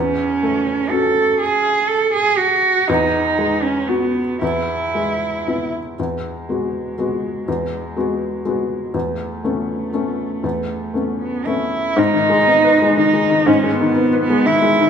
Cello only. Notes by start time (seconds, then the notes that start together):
Already playing: C#4
0.90 A4
1.40 G#4
1.88 A4
2.13 G#4
2.38 F#4
2.88 D#4
3.62 C#4
3.88 B3
4.42 E4
5.98 G#3
8.95 A3
11.21 B3
11.46 E4
11.98 D#4
12.97 D#4
13.47 C#4
13.72 B3
14.21 B3
14.46 E4